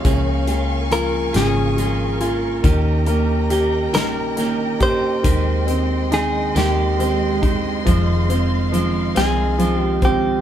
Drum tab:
HH |xxxxxx|xxxxxx|xxxxxx|xxxxxx|
SD |---o--|---oo-|--oo--|---o--|
BD |o-----|o----o|o----o|o----o|